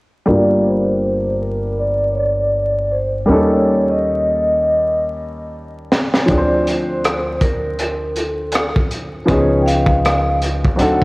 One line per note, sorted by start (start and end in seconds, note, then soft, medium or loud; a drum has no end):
0.26 3.24 G1 medium
0.26 3.23 G3 medium
0.26 3.24 A#3 medium
0.26 3.24 D4 medium
0.26 3.25 F4 medium
0.26 0.68 D5 medium
0.31 3.26 A#4 medium
0.67 1.44 C5 medium
1.42 1.76 A#4 medium
1.79 2.08 D5 medium
2.12 2.17 C#5 medium
2.17 2.93 D5 medium
2.91 3.08 C5 medium
3.26 6.24 D#2 medium
3.26 6.23 G3 medium
3.26 6.24 A#3 medium
3.26 6.24 C#4 medium
3.30 6.25 D#4 medium
3.30 6.26 A4 medium
3.30 3.84 C#5 medium
3.90 4.97 D#5 medium
5.92 snare medium
6.13 snare medium
6.24 9.24 D2 medium
6.24 9.23 F3 medium
6.24 9.24 C4 medium
6.24 6.29 C#5 medium
6.24 kick medium
6.24 closed hi-hat medium
6.30 9.25 D4 medium
6.30 6.37 G#4 medium
6.30 6.64 D5 medium
6.38 9.29 C5 medium
6.67 7.38 C5 medium
6.67 closed hi-hat medium
7.05 cross-stick medium
7.05 closed hi-hat medium
7.41 8.19 A#4 medium
7.41 kick medium
7.41 closed hi-hat medium
7.79 closed hi-hat medium
8.16 8.88 A4 medium
8.16 closed hi-hat medium
8.52 cross-stick loud
8.52 closed hi-hat medium
8.76 kick medium
8.91 closed hi-hat medium
9.25 10.74 F3 medium
9.25 10.75 B3 medium
9.25 10.75 C#4 medium
9.25 9.29 C5 medium
9.25 kick medium
9.25 closed hi-hat medium
9.29 10.74 C#2 medium
9.29 10.76 D#4 medium
9.29 10.77 G#4 medium
9.29 9.61 C#5 medium
9.61 9.66 G5 medium
9.66 10.37 F5 loud
9.66 closed hi-hat medium
9.86 kick medium
10.05 cross-stick loud
10.05 closed hi-hat medium
10.42 closed hi-hat medium
10.65 kick medium
10.76 11.04 D2 medium
10.76 11.04 F#3 medium
10.76 11.04 C4 soft
10.76 11.04 D4 medium
10.76 closed hi-hat medium
10.80 11.04 D#4 soft
10.80 11.04 A4 medium
10.80 11.04 F#5 loud